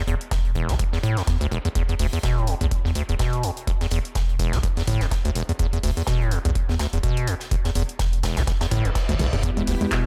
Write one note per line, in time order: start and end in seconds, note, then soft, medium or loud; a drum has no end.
0.07 0.16 E1 loud
0.07 0.15 E2 medium
0.07 closed hi-hat medium
0.21 closed hi-hat soft
0.31 0.61 E1 loud
0.31 kick loud
0.31 snare loud
0.31 closed hi-hat medium
0.45 closed hi-hat soft
0.55 0.71 E1 medium
0.55 kick medium
0.55 closed hi-hat medium
0.68 0.76 B1 medium
0.68 0.75 E3 medium
0.68 snare soft
0.68 closed hi-hat soft
0.79 0.84 E1 medium
0.79 kick loud
0.79 closed hi-hat medium
0.93 0.99 E2 medium
0.93 snare soft
1.03 1.18 A2 loud
1.03 closed hi-hat medium
1.17 1.23 E2 medium
1.17 snare soft
1.17 closed hi-hat soft
1.27 1.36 E2 medium
1.27 kick loud
1.27 snare loud
1.27 closed hi-hat medium
1.41 1.48 E1 medium
1.41 1.47 D2 loud
1.41 closed hi-hat soft
1.51 1.59 E1 loud
1.51 closed hi-hat medium
1.65 1.69 E2 medium
1.65 closed hi-hat soft
1.75 1.83 E2 medium
1.75 kick loud
1.75 closed hi-hat medium
1.89 1.95 E2 medium
1.89 closed hi-hat soft
1.99 2.08 E1 loud
1.99 2.07 D2 medium
1.99 open hi-hat medium
1.99 open hi-hat loud
2.13 2.19 E2 medium
2.13 closed hi-hat soft
2.23 2.53 E1 loud
2.23 2.39 B2 medium
2.23 kick loud
2.23 snare loud
2.23 closed hi-hat medium
2.37 2.49 A2 medium
2.37 closed hi-hat soft
2.47 2.55 E2 medium
2.47 closed hi-hat medium
2.47 open hi-hat loud
2.61 2.68 B1 medium
2.61 2.67 E2 loud
2.61 closed hi-hat soft
2.71 kick loud
2.71 closed hi-hat medium
2.85 2.91 E2 medium
2.85 2.92 E2 medium
2.85 snare soft
2.95 3.03 D2 medium
2.95 closed hi-hat medium
2.95 open hi-hat loud
3.09 3.16 D1 loud
3.09 3.15 E2 medium
3.09 closed hi-hat soft
3.19 3.45 B2 medium
3.19 kick loud
3.19 snare loud
3.19 closed hi-hat medium
3.33 closed hi-hat soft
3.43 3.51 E2 medium
3.43 closed hi-hat medium
3.43 open hi-hat loud
3.57 closed hi-hat soft
3.67 3.72 E1 medium
3.67 kick loud
3.67 closed hi-hat medium
3.81 3.87 E2 medium
3.81 snare soft
3.81 closed hi-hat soft
3.91 4.00 E1 loud
3.91 3.99 E2 medium
3.91 closed hi-hat medium
3.91 open hi-hat loud
4.05 closed hi-hat soft
4.15 4.46 E1 medium
4.15 kick loud
4.15 snare loud
4.15 closed hi-hat medium
4.29 closed hi-hat soft
4.39 4.55 E1 loud
4.39 kick medium
4.39 closed hi-hat medium
4.39 open hi-hat loud
4.52 4.60 B1 medium
4.52 4.59 E3 medium
4.52 snare soft
4.52 closed hi-hat soft
4.63 4.68 E1 medium
4.63 kick loud
4.63 closed hi-hat medium
4.77 4.83 E2 medium
4.77 snare soft
4.77 open hi-hat medium
4.87 4.96 G1 medium
4.87 5.02 A2 loud
4.87 closed hi-hat medium
4.87 open hi-hat loud
5.01 5.08 E1 medium
5.01 5.07 E2 medium
5.01 snare soft
5.01 closed hi-hat soft
5.11 kick loud
5.11 snare loud
5.11 closed hi-hat medium
5.25 5.31 D2 loud
5.25 closed hi-hat medium
5.35 5.43 E1 loud
5.35 closed hi-hat medium
5.35 open hi-hat medium
5.49 5.53 E2 loud
5.49 closed hi-hat soft
5.59 5.67 E2 medium
5.59 kick loud
5.59 closed hi-hat medium
5.73 5.79 E2 medium
5.73 closed hi-hat soft
5.83 5.92 E1 loud
5.83 5.91 D2 medium
5.83 open hi-hat loud
5.83 open hi-hat medium
5.97 6.03 E2 medium
5.97 closed hi-hat soft
6.07 6.37 E1 loud
6.07 6.23 B2 medium
6.07 kick loud
6.07 snare loud
6.07 closed hi-hat medium
6.21 6.33 A2 medium
6.21 closed hi-hat soft
6.31 6.39 E2 loud
6.31 closed hi-hat medium
6.31 open hi-hat loud
6.45 6.52 B1 medium
6.45 6.51 E2 loud
6.45 closed hi-hat soft
6.55 kick loud
6.55 closed hi-hat medium
6.69 6.76 E2 medium
6.69 6.75 E2 medium
6.69 snare soft
6.79 6.87 D2 medium
6.79 snare loud
6.79 closed hi-hat medium
6.79 open hi-hat loud
6.93 7.00 D1 loud
6.93 6.99 E2 medium
6.93 closed hi-hat soft
7.03 7.29 B2 medium
7.03 kick loud
7.03 closed hi-hat medium
7.17 closed hi-hat medium
7.27 7.35 E2 loud
7.27 closed hi-hat medium
7.27 open hi-hat loud
7.40 snare soft
7.40 closed hi-hat soft
7.51 7.56 E1 medium
7.51 kick loud
7.51 closed hi-hat medium
7.64 7.71 E2 medium
7.64 snare soft
7.64 closed hi-hat soft
7.75 7.84 E1 loud
7.75 7.83 E2 medium
7.75 closed hi-hat medium
7.75 open hi-hat loud
7.89 closed hi-hat soft
7.99 8.29 E1 loud
7.99 kick loud
7.99 snare loud
7.99 closed hi-hat medium
8.13 closed hi-hat soft
8.23 8.39 E1 loud
8.23 kick medium
8.23 snare loud
8.23 closed hi-hat medium
8.23 open hi-hat medium
8.36 8.44 B1 medium
8.36 8.43 E3 medium
8.36 snare medium
8.36 closed hi-hat medium
8.36 closed hi-hat soft
8.47 8.52 E1 medium
8.47 kick loud
8.47 snare loud
8.47 closed hi-hat medium
8.47 reverse cymbal medium
8.61 8.67 E2 medium
8.61 snare loud
8.61 closed hi-hat medium
8.61 open hi-hat medium
8.71 8.80 G1 medium
8.71 8.86 A2 loud
8.71 open hi-hat loud
8.85 8.92 E1 medium
8.85 8.91 E2 loud
8.85 closed hi-hat soft
8.95 kick loud
8.95 snare loud
8.95 closed hi-hat medium
9.09 9.16 G1 medium
9.09 9.15 D2 loud
9.09 closed hi-hat medium
9.09 high tom medium
9.19 9.27 E1 loud
9.19 9.28 B1 medium
9.19 closed hi-hat medium
9.19 open hi-hat loud
9.19 mid tom medium
9.33 9.62 E1 loud
9.33 9.36 E2 loud
9.33 closed hi-hat soft
9.33 mid tom medium
9.43 9.51 E2 medium
9.43 10.06 B3 medium
9.43 10.06 E4 medium
9.43 10.06 G4 medium
9.43 kick loud
9.43 closed hi-hat medium
9.57 9.63 E2 medium
9.57 closed hi-hat soft
9.57 low conga medium
9.67 9.76 E1 loud
9.67 9.75 D2 medium
9.67 open hi-hat loud
9.67 open hi-hat medium
9.81 9.87 E2 medium
9.81 closed hi-hat soft
9.81 low conga medium
9.91 10.06 E1 loud
9.91 10.06 B2 medium
9.91 kick loud
9.91 snare loud
9.91 clap loud
9.91 closed hi-hat medium